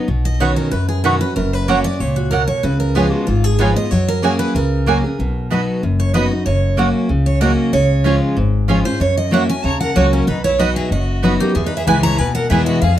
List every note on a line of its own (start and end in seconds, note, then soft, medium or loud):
0.08 0.53 B1 medium
0.08 0.39 B2 medium
0.25 0.40 D#5 loud
0.40 0.71 B2 medium
0.40 0.71 D#3 medium
0.40 0.71 C#4 medium
0.40 0.50 D#4 medium
0.40 0.72 F#4 medium
0.40 0.50 B4 loud
0.40 0.56 C#5 medium
0.40 0.50 F#5 medium
0.40 0.51 C#6 loud
0.56 0.71 A#4 medium
0.71 1.17 F#2 medium
0.71 1.33 F#2 medium
0.71 0.88 B4 loud
0.89 1.03 G#4 medium
1.04 1.20 B2 medium
1.04 1.20 D#3 medium
1.04 1.21 C#4 medium
1.04 1.14 D#4 medium
1.04 1.20 F#4 medium
1.04 1.20 A#4 medium
1.04 1.14 B4 medium
1.04 1.14 F#5 loud
1.04 1.15 C#6 loud
1.21 1.37 C#4 soft
1.21 1.36 F#4 medium
1.21 1.35 B4 loud
1.36 1.81 F#1 medium
1.36 1.97 F#2 loud
1.36 1.53 A#4 medium
1.53 1.68 B4 medium
1.68 1.84 F#3 medium
1.68 1.78 A#3 loud
1.68 1.85 A#3 medium
1.68 1.85 C#4 medium
1.68 1.78 F#4 medium
1.68 1.83 F#4 medium
1.68 1.84 C#5 medium
1.68 1.78 C#5 loud
1.68 1.78 F#5 loud
1.84 2.00 C#4 soft
1.84 1.99 F#4 medium
1.84 2.00 D5 loud
2.00 2.45 C#2 medium
2.00 2.31 A#2 medium
2.00 2.16 C#5 medium
2.16 2.31 F#4 medium
2.31 2.62 B2 medium
2.31 2.41 A#3 medium
2.31 2.42 F#4 medium
2.31 2.47 A#4 medium
2.31 2.42 C#5 loud
2.31 2.42 F#5 loud
2.48 2.63 C#5 loud
2.63 3.09 C#2 medium
2.63 3.25 C#3 loud
2.63 2.79 B4 medium
2.80 2.95 A#4 medium
2.95 3.26 F3 medium
2.95 3.26 G#3 medium
2.95 3.05 B3 medium
2.95 3.26 B3 medium
2.95 3.05 F4 medium
2.95 3.27 F4 medium
2.95 3.12 G#4 medium
2.95 3.06 C#5 medium
2.95 3.06 G#5 medium
3.12 3.26 F#4 medium
3.27 3.73 G#1 medium
3.27 3.89 G#2 medium
3.27 3.44 F4 medium
3.44 3.59 G#4 medium
3.59 3.75 F3 medium
3.59 3.76 G#3 medium
3.59 3.69 B3 medium
3.59 3.76 B3 medium
3.59 3.69 F4 loud
3.59 3.74 F4 loud
3.59 3.75 B4 medium
3.59 3.69 C#5 loud
3.59 3.70 G#5 loud
3.76 3.92 B3 medium
3.76 3.91 F4 medium
3.76 3.91 D#5 loud
3.91 4.36 F#2 medium
3.91 4.21 F#3 loud
3.91 4.07 C#5 medium
4.08 4.23 A#4 medium
4.22 4.53 F#3 medium
4.22 4.33 A#3 loud
4.22 4.54 A#3 medium
4.22 4.54 C#4 medium
4.22 4.33 F#4 loud
4.22 4.39 G#4 medium
4.22 4.54 G#4 loud
4.22 4.33 C#5 loud
4.22 4.33 G#5 loud
4.39 4.54 B4 loud
4.55 5.00 C#2 medium
4.55 5.16 C#3 medium
4.55 5.47 A#4 medium
4.86 5.03 F#3 medium
4.86 4.96 A#3 medium
4.86 5.03 A#3 medium
4.86 5.03 C#4 medium
4.86 4.97 F#4 loud
4.86 5.03 G#4 medium
4.86 4.97 C#5 medium
4.86 4.97 G#5 loud
5.04 5.20 C#4 soft
5.04 5.19 G#4 medium
5.19 5.64 B1 medium
5.19 5.80 B2 medium
5.50 5.81 F#3 medium
5.50 5.60 B3 medium
5.50 5.82 B3 medium
5.50 5.82 D#4 medium
5.50 5.60 F#4 loud
5.50 5.82 F#4 medium
5.50 5.61 D#5 loud
5.50 5.61 B5 loud
5.83 6.28 F#1 medium
5.83 6.44 F#2 medium
6.00 6.14 C#5 medium
6.14 6.31 F#3 medium
6.14 6.23 B3 medium
6.14 6.31 B3 loud
6.14 6.31 D#4 medium
6.14 6.24 F#4 medium
6.14 6.30 F#4 medium
6.14 6.44 D#5 loud
6.14 6.24 D#5 medium
6.14 6.24 B5 medium
6.31 6.47 D#4 medium
6.31 6.46 F#4 medium
6.46 6.91 F#1 medium
6.46 7.07 F#2 medium
6.46 6.91 C#5 medium
6.77 7.08 F#3 medium
6.77 6.87 A#3 medium
6.77 7.08 A#3 medium
6.77 7.09 C#4 medium
6.77 6.87 F#4 medium
6.77 7.09 F#4 loud
6.77 6.88 C#5 loud
6.77 6.88 F#5 loud
7.09 7.55 C#2 medium
7.09 7.70 C#3 medium
7.26 7.41 C#5 medium
7.41 7.72 F#3 medium
7.41 7.51 A#3 loud
7.41 7.72 A#3 medium
7.41 7.72 C#4 medium
7.41 7.51 F#4 medium
7.41 7.73 F#4 medium
7.41 7.51 C#5 loud
7.41 7.71 D#5 loud
7.41 7.51 F#5 loud
7.73 8.18 C#2 medium
7.73 8.34 C#3 loud
7.73 8.18 C#5 medium
8.04 8.35 F3 medium
8.04 8.36 G#3 medium
8.04 8.14 C#4 medium
8.04 8.36 C#4 medium
8.04 8.15 F4 medium
8.04 8.36 F4 loud
8.04 8.15 C#5 medium
8.04 8.15 G#5 loud
8.37 8.82 G#1 medium
8.37 8.98 G#2 medium
8.68 8.84 F3 medium
8.68 8.85 G#3 medium
8.68 8.78 C#4 medium
8.68 8.85 C#4 medium
8.68 8.78 F4 loud
8.68 8.84 F4 medium
8.68 8.78 C#5 loud
8.68 8.79 G#5 loud
8.85 9.01 C#4 soft
8.85 9.00 F4 medium
8.85 9.00 C5 loud
9.00 9.61 F#2 medium
9.00 9.45 F#2 medium
9.00 9.17 C#5 medium
9.17 9.32 D#5 medium
9.31 9.48 F#3 medium
9.31 9.42 A#3 medium
9.31 9.48 A#3 medium
9.31 9.48 C#4 loud
9.31 9.42 F#4 medium
9.31 9.46 F#4 medium
9.31 9.42 C#5 loud
9.31 9.49 E5 medium
9.31 9.42 F#5 loud
9.47 9.64 C#4 soft
9.47 9.63 F#4 medium
9.47 9.65 G#5 medium
9.64 9.91 D#2 medium
9.64 10.25 C#3 medium
9.64 9.80 C#5 medium
9.64 9.80 A#5 loud
9.81 9.95 A#4 medium
9.81 9.96 F#5 loud
9.95 10.23 C#2 medium
9.95 10.26 F#3 medium
9.95 10.05 A#3 medium
9.95 10.27 A#3 loud
9.95 10.27 C#4 loud
9.95 10.11 F#4 medium
9.95 10.06 F#4 medium
9.95 10.27 F#4 loud
9.95 10.12 C#5 medium
9.95 10.06 C#5 loud
9.95 10.06 F#5 medium
10.12 10.26 C#4 medium
10.12 10.27 A#4 medium
10.27 10.72 B1 medium
10.27 10.88 B2 medium
10.27 10.43 D#4 medium
10.27 10.44 B4 medium
10.44 10.58 E4 medium
10.44 10.59 C#5 loud
10.59 10.90 F#3 medium
10.59 10.69 B3 medium
10.59 10.90 B3 medium
10.59 10.90 D#4 medium
10.59 10.69 F#4 medium
10.59 10.74 F#4 medium
10.59 10.91 F#4 medium
10.59 10.76 D#5 medium
10.59 10.69 D#5 medium
10.59 10.69 B5 loud
10.75 10.90 G#4 medium
10.75 10.91 E5 medium
10.90 11.36 F#1 medium
10.90 11.52 F#2 medium
10.90 11.36 F#4 medium
10.90 11.37 D#5 medium
11.23 11.54 F#3 medium
11.23 11.32 B3 medium
11.23 11.54 B3 medium
11.23 11.54 D#4 loud
11.23 11.33 F#4 loud
11.23 11.55 F#4 loud
11.23 11.33 D#5 medium
11.23 11.33 B5 loud
11.38 11.53 A#3 medium
11.38 11.54 G4 medium
11.55 11.78 E2 medium
11.55 12.16 E2 medium
11.55 11.64 B3 medium
11.55 11.65 G#4 medium
11.65 11.75 D#4 medium
11.65 11.76 B4 medium
11.77 11.86 G#4 medium
11.77 11.87 E5 medium
11.86 12.14 C#2 medium
11.86 12.17 E3 medium
11.86 12.18 G#3 medium
11.86 11.97 B3 medium
11.86 12.18 B3 medium
11.86 11.97 E4 loud
11.86 12.18 E4 medium
11.86 12.01 B4 medium
11.86 11.97 B4 loud
11.86 12.03 G#5 loud
11.86 11.97 G#5 loud
12.02 12.20 C#5 loud
12.02 12.18 A#5 loud
12.18 12.46 D#2 medium
12.18 12.79 B2 medium
12.18 12.34 B4 medium
12.18 12.34 G#5 medium
12.35 12.49 A#4 medium
12.35 12.49 F#5 loud
12.50 12.78 E2 medium
12.50 12.81 E3 medium
12.50 12.81 G#3 medium
12.50 12.60 B3 loud
12.50 12.81 B3 loud
12.50 12.60 E4 loud
12.50 12.82 E4 loud
12.50 12.66 G#4 medium
12.50 12.60 B4 medium
12.50 12.66 E5 medium
12.50 12.61 G#5 loud
12.66 12.81 F#4 medium
12.66 12.81 D#5 loud
12.82 12.99 F2 medium
12.82 12.97 G#4 medium
12.82 12.97 F5 loud